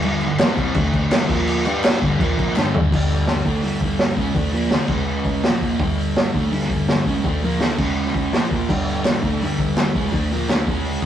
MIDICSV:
0, 0, Header, 1, 3, 480
1, 0, Start_track
1, 0, Tempo, 360144
1, 55, Time_signature, 4, 2, 24, 8
1, 14735, End_track
2, 0, Start_track
2, 0, Title_t, "Distorted electric guitar"
2, 0, Program_c, 0, 30
2, 59, Note_on_c, 0, 43, 97
2, 71, Note_on_c, 0, 50, 107
2, 79, Note_on_c, 0, 55, 113
2, 289, Note_off_c, 0, 43, 0
2, 295, Note_off_c, 0, 50, 0
2, 299, Note_off_c, 0, 55, 0
2, 320, Note_on_c, 0, 50, 71
2, 321, Note_on_c, 0, 43, 62
2, 499, Note_off_c, 0, 43, 0
2, 544, Note_off_c, 0, 50, 0
2, 544, Note_on_c, 0, 48, 90
2, 550, Note_on_c, 0, 55, 104
2, 569, Note_on_c, 0, 60, 112
2, 1010, Note_off_c, 0, 48, 0
2, 1013, Note_off_c, 0, 55, 0
2, 1019, Note_on_c, 0, 50, 110
2, 1023, Note_off_c, 0, 60, 0
2, 1032, Note_on_c, 0, 57, 109
2, 1032, Note_on_c, 0, 62, 102
2, 1479, Note_off_c, 0, 50, 0
2, 1492, Note_on_c, 0, 43, 104
2, 1493, Note_off_c, 0, 62, 0
2, 1494, Note_off_c, 0, 57, 0
2, 1495, Note_on_c, 0, 50, 102
2, 1510, Note_on_c, 0, 55, 106
2, 1706, Note_off_c, 0, 50, 0
2, 1711, Note_on_c, 0, 46, 88
2, 1721, Note_off_c, 0, 55, 0
2, 1724, Note_off_c, 0, 43, 0
2, 1726, Note_on_c, 0, 53, 100
2, 1739, Note_on_c, 0, 58, 98
2, 2192, Note_off_c, 0, 46, 0
2, 2200, Note_off_c, 0, 53, 0
2, 2206, Note_off_c, 0, 58, 0
2, 2210, Note_on_c, 0, 55, 102
2, 2228, Note_on_c, 0, 62, 94
2, 2244, Note_on_c, 0, 67, 117
2, 2681, Note_off_c, 0, 55, 0
2, 2690, Note_off_c, 0, 62, 0
2, 2693, Note_on_c, 0, 43, 91
2, 2699, Note_off_c, 0, 67, 0
2, 2704, Note_on_c, 0, 50, 106
2, 2710, Note_on_c, 0, 55, 106
2, 2918, Note_off_c, 0, 50, 0
2, 2923, Note_off_c, 0, 43, 0
2, 2924, Note_on_c, 0, 46, 99
2, 2932, Note_off_c, 0, 55, 0
2, 2946, Note_on_c, 0, 53, 123
2, 2955, Note_on_c, 0, 58, 124
2, 3398, Note_off_c, 0, 46, 0
2, 3409, Note_off_c, 0, 53, 0
2, 3414, Note_off_c, 0, 58, 0
2, 3419, Note_on_c, 0, 43, 110
2, 3438, Note_on_c, 0, 50, 102
2, 3443, Note_on_c, 0, 55, 111
2, 3886, Note_off_c, 0, 43, 0
2, 3895, Note_off_c, 0, 50, 0
2, 3898, Note_off_c, 0, 55, 0
2, 3900, Note_on_c, 0, 43, 92
2, 3916, Note_on_c, 0, 50, 107
2, 3917, Note_on_c, 0, 55, 108
2, 4592, Note_off_c, 0, 50, 0
2, 4606, Note_off_c, 0, 43, 0
2, 4606, Note_off_c, 0, 55, 0
2, 4608, Note_on_c, 0, 50, 89
2, 4612, Note_on_c, 0, 57, 84
2, 4632, Note_on_c, 0, 62, 100
2, 4840, Note_off_c, 0, 50, 0
2, 4842, Note_off_c, 0, 57, 0
2, 4847, Note_on_c, 0, 43, 90
2, 4852, Note_off_c, 0, 62, 0
2, 4855, Note_on_c, 0, 50, 113
2, 4865, Note_on_c, 0, 55, 107
2, 5551, Note_off_c, 0, 50, 0
2, 5556, Note_on_c, 0, 49, 87
2, 5560, Note_off_c, 0, 43, 0
2, 5570, Note_off_c, 0, 55, 0
2, 5578, Note_on_c, 0, 56, 83
2, 5587, Note_on_c, 0, 61, 100
2, 5791, Note_off_c, 0, 49, 0
2, 5797, Note_on_c, 0, 50, 83
2, 5804, Note_off_c, 0, 56, 0
2, 5808, Note_off_c, 0, 61, 0
2, 5809, Note_on_c, 0, 57, 111
2, 5814, Note_on_c, 0, 62, 104
2, 6023, Note_off_c, 0, 50, 0
2, 6028, Note_on_c, 0, 46, 95
2, 6038, Note_off_c, 0, 57, 0
2, 6043, Note_on_c, 0, 53, 92
2, 6044, Note_off_c, 0, 62, 0
2, 6063, Note_on_c, 0, 58, 107
2, 6271, Note_off_c, 0, 46, 0
2, 6279, Note_off_c, 0, 53, 0
2, 6280, Note_on_c, 0, 50, 96
2, 6285, Note_on_c, 0, 57, 101
2, 6289, Note_off_c, 0, 58, 0
2, 6303, Note_on_c, 0, 62, 102
2, 6517, Note_off_c, 0, 50, 0
2, 6520, Note_off_c, 0, 57, 0
2, 6529, Note_off_c, 0, 62, 0
2, 6536, Note_on_c, 0, 49, 91
2, 6558, Note_on_c, 0, 56, 97
2, 6566, Note_on_c, 0, 61, 94
2, 7246, Note_off_c, 0, 49, 0
2, 7257, Note_off_c, 0, 56, 0
2, 7261, Note_off_c, 0, 61, 0
2, 7261, Note_on_c, 0, 46, 89
2, 7270, Note_on_c, 0, 53, 91
2, 7282, Note_on_c, 0, 58, 102
2, 7729, Note_off_c, 0, 46, 0
2, 7733, Note_off_c, 0, 53, 0
2, 7733, Note_on_c, 0, 43, 85
2, 7739, Note_off_c, 0, 58, 0
2, 7750, Note_on_c, 0, 50, 96
2, 7762, Note_on_c, 0, 55, 108
2, 8432, Note_off_c, 0, 50, 0
2, 8445, Note_off_c, 0, 43, 0
2, 8448, Note_on_c, 0, 50, 87
2, 8456, Note_off_c, 0, 55, 0
2, 8461, Note_on_c, 0, 57, 105
2, 8479, Note_on_c, 0, 62, 102
2, 8681, Note_on_c, 0, 43, 91
2, 8683, Note_off_c, 0, 50, 0
2, 8689, Note_off_c, 0, 57, 0
2, 8698, Note_off_c, 0, 62, 0
2, 8700, Note_on_c, 0, 50, 106
2, 8708, Note_on_c, 0, 55, 112
2, 9400, Note_off_c, 0, 43, 0
2, 9409, Note_off_c, 0, 50, 0
2, 9413, Note_off_c, 0, 55, 0
2, 9416, Note_on_c, 0, 49, 90
2, 9423, Note_on_c, 0, 56, 77
2, 9434, Note_on_c, 0, 61, 90
2, 9647, Note_off_c, 0, 49, 0
2, 9651, Note_off_c, 0, 56, 0
2, 9657, Note_off_c, 0, 61, 0
2, 9669, Note_on_c, 0, 50, 90
2, 9677, Note_on_c, 0, 57, 96
2, 9685, Note_on_c, 0, 62, 108
2, 9894, Note_off_c, 0, 50, 0
2, 9898, Note_off_c, 0, 57, 0
2, 9900, Note_on_c, 0, 46, 91
2, 9902, Note_off_c, 0, 62, 0
2, 9921, Note_on_c, 0, 53, 91
2, 9931, Note_on_c, 0, 58, 104
2, 10128, Note_off_c, 0, 46, 0
2, 10133, Note_on_c, 0, 50, 87
2, 10140, Note_off_c, 0, 53, 0
2, 10145, Note_off_c, 0, 58, 0
2, 10147, Note_on_c, 0, 57, 90
2, 10153, Note_on_c, 0, 62, 110
2, 10367, Note_off_c, 0, 50, 0
2, 10374, Note_off_c, 0, 57, 0
2, 10375, Note_on_c, 0, 49, 90
2, 10376, Note_off_c, 0, 62, 0
2, 10386, Note_on_c, 0, 56, 93
2, 10394, Note_on_c, 0, 61, 102
2, 11088, Note_off_c, 0, 49, 0
2, 11094, Note_off_c, 0, 56, 0
2, 11098, Note_off_c, 0, 61, 0
2, 11112, Note_on_c, 0, 46, 92
2, 11126, Note_on_c, 0, 53, 103
2, 11136, Note_on_c, 0, 58, 105
2, 11577, Note_off_c, 0, 46, 0
2, 11584, Note_off_c, 0, 53, 0
2, 11589, Note_off_c, 0, 58, 0
2, 11601, Note_on_c, 0, 43, 91
2, 11609, Note_on_c, 0, 50, 106
2, 11622, Note_on_c, 0, 55, 98
2, 12281, Note_off_c, 0, 50, 0
2, 12296, Note_off_c, 0, 55, 0
2, 12297, Note_on_c, 0, 50, 93
2, 12302, Note_off_c, 0, 43, 0
2, 12302, Note_on_c, 0, 57, 95
2, 12316, Note_on_c, 0, 62, 110
2, 12530, Note_off_c, 0, 50, 0
2, 12532, Note_off_c, 0, 57, 0
2, 12540, Note_off_c, 0, 62, 0
2, 12557, Note_on_c, 0, 43, 100
2, 12568, Note_on_c, 0, 50, 102
2, 12575, Note_on_c, 0, 55, 116
2, 13258, Note_off_c, 0, 50, 0
2, 13261, Note_off_c, 0, 43, 0
2, 13263, Note_on_c, 0, 49, 85
2, 13264, Note_off_c, 0, 55, 0
2, 13270, Note_on_c, 0, 56, 94
2, 13280, Note_on_c, 0, 61, 81
2, 13475, Note_off_c, 0, 49, 0
2, 13480, Note_on_c, 0, 50, 98
2, 13494, Note_off_c, 0, 56, 0
2, 13499, Note_on_c, 0, 57, 88
2, 13502, Note_off_c, 0, 61, 0
2, 13508, Note_on_c, 0, 62, 97
2, 13722, Note_off_c, 0, 50, 0
2, 13731, Note_off_c, 0, 57, 0
2, 13736, Note_off_c, 0, 62, 0
2, 13748, Note_on_c, 0, 46, 87
2, 13765, Note_on_c, 0, 53, 100
2, 13770, Note_on_c, 0, 58, 107
2, 13976, Note_off_c, 0, 46, 0
2, 13984, Note_off_c, 0, 53, 0
2, 13987, Note_off_c, 0, 58, 0
2, 13990, Note_on_c, 0, 50, 97
2, 14005, Note_on_c, 0, 57, 99
2, 14018, Note_on_c, 0, 62, 103
2, 14217, Note_off_c, 0, 50, 0
2, 14224, Note_on_c, 0, 49, 82
2, 14225, Note_off_c, 0, 57, 0
2, 14231, Note_off_c, 0, 62, 0
2, 14241, Note_on_c, 0, 56, 92
2, 14256, Note_on_c, 0, 61, 102
2, 14735, Note_off_c, 0, 49, 0
2, 14735, Note_off_c, 0, 56, 0
2, 14735, Note_off_c, 0, 61, 0
2, 14735, End_track
3, 0, Start_track
3, 0, Title_t, "Drums"
3, 30, Note_on_c, 9, 49, 84
3, 164, Note_off_c, 9, 49, 0
3, 272, Note_on_c, 9, 49, 66
3, 405, Note_off_c, 9, 49, 0
3, 516, Note_on_c, 9, 49, 80
3, 521, Note_on_c, 9, 38, 115
3, 523, Note_on_c, 9, 39, 93
3, 649, Note_off_c, 9, 49, 0
3, 654, Note_off_c, 9, 38, 0
3, 657, Note_off_c, 9, 39, 0
3, 762, Note_on_c, 9, 36, 83
3, 765, Note_on_c, 9, 49, 65
3, 895, Note_off_c, 9, 36, 0
3, 899, Note_off_c, 9, 49, 0
3, 992, Note_on_c, 9, 49, 87
3, 1000, Note_on_c, 9, 36, 127
3, 1125, Note_off_c, 9, 49, 0
3, 1134, Note_off_c, 9, 36, 0
3, 1238, Note_on_c, 9, 36, 83
3, 1242, Note_on_c, 9, 49, 60
3, 1371, Note_off_c, 9, 36, 0
3, 1375, Note_off_c, 9, 49, 0
3, 1480, Note_on_c, 9, 49, 95
3, 1485, Note_on_c, 9, 38, 120
3, 1490, Note_on_c, 9, 39, 100
3, 1613, Note_off_c, 9, 49, 0
3, 1618, Note_off_c, 9, 38, 0
3, 1623, Note_off_c, 9, 39, 0
3, 1722, Note_on_c, 9, 36, 107
3, 1725, Note_on_c, 9, 49, 94
3, 1855, Note_off_c, 9, 36, 0
3, 1858, Note_off_c, 9, 49, 0
3, 1963, Note_on_c, 9, 49, 96
3, 2096, Note_off_c, 9, 49, 0
3, 2209, Note_on_c, 9, 39, 70
3, 2222, Note_on_c, 9, 49, 72
3, 2343, Note_off_c, 9, 39, 0
3, 2355, Note_off_c, 9, 49, 0
3, 2449, Note_on_c, 9, 39, 105
3, 2450, Note_on_c, 9, 49, 93
3, 2456, Note_on_c, 9, 38, 111
3, 2582, Note_off_c, 9, 39, 0
3, 2584, Note_off_c, 9, 49, 0
3, 2589, Note_off_c, 9, 38, 0
3, 2692, Note_on_c, 9, 36, 83
3, 2701, Note_on_c, 9, 49, 61
3, 2825, Note_off_c, 9, 36, 0
3, 2835, Note_off_c, 9, 49, 0
3, 2934, Note_on_c, 9, 36, 125
3, 2937, Note_on_c, 9, 49, 85
3, 3067, Note_off_c, 9, 36, 0
3, 3071, Note_off_c, 9, 49, 0
3, 3169, Note_on_c, 9, 36, 83
3, 3180, Note_on_c, 9, 49, 66
3, 3302, Note_off_c, 9, 36, 0
3, 3313, Note_off_c, 9, 49, 0
3, 3412, Note_on_c, 9, 39, 95
3, 3429, Note_on_c, 9, 38, 70
3, 3545, Note_off_c, 9, 39, 0
3, 3562, Note_off_c, 9, 38, 0
3, 3654, Note_on_c, 9, 43, 92
3, 3787, Note_off_c, 9, 43, 0
3, 3898, Note_on_c, 9, 36, 113
3, 3910, Note_on_c, 9, 57, 121
3, 4031, Note_off_c, 9, 36, 0
3, 4044, Note_off_c, 9, 57, 0
3, 4142, Note_on_c, 9, 46, 63
3, 4276, Note_off_c, 9, 46, 0
3, 4358, Note_on_c, 9, 46, 72
3, 4363, Note_on_c, 9, 38, 99
3, 4491, Note_off_c, 9, 46, 0
3, 4496, Note_off_c, 9, 38, 0
3, 4601, Note_on_c, 9, 46, 59
3, 4603, Note_on_c, 9, 36, 81
3, 4735, Note_off_c, 9, 46, 0
3, 4737, Note_off_c, 9, 36, 0
3, 4847, Note_on_c, 9, 46, 87
3, 4981, Note_off_c, 9, 46, 0
3, 5079, Note_on_c, 9, 36, 81
3, 5084, Note_on_c, 9, 46, 65
3, 5212, Note_off_c, 9, 36, 0
3, 5218, Note_off_c, 9, 46, 0
3, 5315, Note_on_c, 9, 46, 79
3, 5320, Note_on_c, 9, 38, 106
3, 5448, Note_off_c, 9, 46, 0
3, 5453, Note_off_c, 9, 38, 0
3, 5556, Note_on_c, 9, 36, 77
3, 5556, Note_on_c, 9, 46, 56
3, 5689, Note_off_c, 9, 36, 0
3, 5689, Note_off_c, 9, 46, 0
3, 5794, Note_on_c, 9, 46, 81
3, 5795, Note_on_c, 9, 36, 120
3, 5927, Note_off_c, 9, 46, 0
3, 5928, Note_off_c, 9, 36, 0
3, 6028, Note_on_c, 9, 46, 71
3, 6161, Note_off_c, 9, 46, 0
3, 6270, Note_on_c, 9, 46, 81
3, 6275, Note_on_c, 9, 38, 104
3, 6403, Note_off_c, 9, 46, 0
3, 6409, Note_off_c, 9, 38, 0
3, 6500, Note_on_c, 9, 49, 87
3, 6508, Note_on_c, 9, 36, 103
3, 6633, Note_off_c, 9, 49, 0
3, 6641, Note_off_c, 9, 36, 0
3, 6987, Note_on_c, 9, 46, 55
3, 6992, Note_on_c, 9, 36, 80
3, 7120, Note_off_c, 9, 46, 0
3, 7125, Note_off_c, 9, 36, 0
3, 7242, Note_on_c, 9, 46, 78
3, 7247, Note_on_c, 9, 38, 124
3, 7375, Note_off_c, 9, 46, 0
3, 7381, Note_off_c, 9, 38, 0
3, 7472, Note_on_c, 9, 46, 53
3, 7481, Note_on_c, 9, 36, 74
3, 7606, Note_off_c, 9, 46, 0
3, 7614, Note_off_c, 9, 36, 0
3, 7725, Note_on_c, 9, 36, 127
3, 7729, Note_on_c, 9, 46, 86
3, 7858, Note_off_c, 9, 36, 0
3, 7862, Note_off_c, 9, 46, 0
3, 7971, Note_on_c, 9, 46, 63
3, 8105, Note_off_c, 9, 46, 0
3, 8213, Note_on_c, 9, 46, 75
3, 8218, Note_on_c, 9, 38, 111
3, 8346, Note_off_c, 9, 46, 0
3, 8351, Note_off_c, 9, 38, 0
3, 8452, Note_on_c, 9, 46, 56
3, 8453, Note_on_c, 9, 36, 80
3, 8585, Note_off_c, 9, 46, 0
3, 8586, Note_off_c, 9, 36, 0
3, 8696, Note_on_c, 9, 46, 85
3, 8812, Note_on_c, 9, 38, 34
3, 8829, Note_off_c, 9, 46, 0
3, 8929, Note_on_c, 9, 36, 83
3, 8932, Note_on_c, 9, 46, 59
3, 8945, Note_off_c, 9, 38, 0
3, 9063, Note_off_c, 9, 36, 0
3, 9066, Note_off_c, 9, 46, 0
3, 9173, Note_on_c, 9, 46, 81
3, 9179, Note_on_c, 9, 38, 119
3, 9307, Note_off_c, 9, 46, 0
3, 9312, Note_off_c, 9, 38, 0
3, 9413, Note_on_c, 9, 36, 73
3, 9422, Note_on_c, 9, 46, 59
3, 9546, Note_off_c, 9, 36, 0
3, 9555, Note_off_c, 9, 46, 0
3, 9654, Note_on_c, 9, 36, 127
3, 9654, Note_on_c, 9, 46, 90
3, 9787, Note_off_c, 9, 36, 0
3, 9787, Note_off_c, 9, 46, 0
3, 9894, Note_on_c, 9, 46, 72
3, 10027, Note_off_c, 9, 46, 0
3, 10132, Note_on_c, 9, 46, 73
3, 10137, Note_on_c, 9, 38, 105
3, 10265, Note_off_c, 9, 46, 0
3, 10271, Note_off_c, 9, 38, 0
3, 10373, Note_on_c, 9, 49, 96
3, 10375, Note_on_c, 9, 36, 101
3, 10507, Note_off_c, 9, 49, 0
3, 10508, Note_off_c, 9, 36, 0
3, 10740, Note_on_c, 9, 38, 33
3, 10857, Note_on_c, 9, 36, 82
3, 10863, Note_on_c, 9, 46, 57
3, 10873, Note_off_c, 9, 38, 0
3, 10990, Note_off_c, 9, 36, 0
3, 10996, Note_off_c, 9, 46, 0
3, 11101, Note_on_c, 9, 46, 81
3, 11106, Note_on_c, 9, 38, 116
3, 11234, Note_off_c, 9, 46, 0
3, 11240, Note_off_c, 9, 38, 0
3, 11345, Note_on_c, 9, 36, 87
3, 11357, Note_on_c, 9, 46, 53
3, 11478, Note_off_c, 9, 36, 0
3, 11490, Note_off_c, 9, 46, 0
3, 11583, Note_on_c, 9, 36, 127
3, 11593, Note_on_c, 9, 57, 105
3, 11716, Note_off_c, 9, 36, 0
3, 11726, Note_off_c, 9, 57, 0
3, 11835, Note_on_c, 9, 46, 61
3, 11968, Note_off_c, 9, 46, 0
3, 12056, Note_on_c, 9, 46, 69
3, 12061, Note_on_c, 9, 38, 103
3, 12063, Note_on_c, 9, 39, 94
3, 12189, Note_off_c, 9, 46, 0
3, 12194, Note_off_c, 9, 38, 0
3, 12196, Note_off_c, 9, 39, 0
3, 12289, Note_on_c, 9, 46, 59
3, 12296, Note_on_c, 9, 36, 81
3, 12422, Note_off_c, 9, 46, 0
3, 12429, Note_off_c, 9, 36, 0
3, 12542, Note_on_c, 9, 46, 84
3, 12675, Note_off_c, 9, 46, 0
3, 12773, Note_on_c, 9, 46, 59
3, 12775, Note_on_c, 9, 36, 85
3, 12784, Note_on_c, 9, 39, 69
3, 12906, Note_off_c, 9, 46, 0
3, 12909, Note_off_c, 9, 36, 0
3, 12917, Note_off_c, 9, 39, 0
3, 13013, Note_on_c, 9, 46, 76
3, 13019, Note_on_c, 9, 38, 116
3, 13027, Note_on_c, 9, 39, 102
3, 13147, Note_off_c, 9, 46, 0
3, 13152, Note_off_c, 9, 38, 0
3, 13160, Note_off_c, 9, 39, 0
3, 13260, Note_on_c, 9, 36, 85
3, 13264, Note_on_c, 9, 46, 61
3, 13393, Note_off_c, 9, 36, 0
3, 13398, Note_off_c, 9, 46, 0
3, 13501, Note_on_c, 9, 36, 126
3, 13504, Note_on_c, 9, 46, 86
3, 13634, Note_off_c, 9, 36, 0
3, 13637, Note_off_c, 9, 46, 0
3, 13738, Note_on_c, 9, 46, 66
3, 13871, Note_off_c, 9, 46, 0
3, 13980, Note_on_c, 9, 46, 77
3, 13985, Note_on_c, 9, 39, 92
3, 13986, Note_on_c, 9, 38, 103
3, 14114, Note_off_c, 9, 46, 0
3, 14118, Note_off_c, 9, 39, 0
3, 14119, Note_off_c, 9, 38, 0
3, 14216, Note_on_c, 9, 46, 57
3, 14218, Note_on_c, 9, 36, 97
3, 14349, Note_off_c, 9, 46, 0
3, 14352, Note_off_c, 9, 36, 0
3, 14452, Note_on_c, 9, 46, 82
3, 14585, Note_off_c, 9, 46, 0
3, 14691, Note_on_c, 9, 46, 60
3, 14694, Note_on_c, 9, 36, 83
3, 14735, Note_off_c, 9, 36, 0
3, 14735, Note_off_c, 9, 46, 0
3, 14735, End_track
0, 0, End_of_file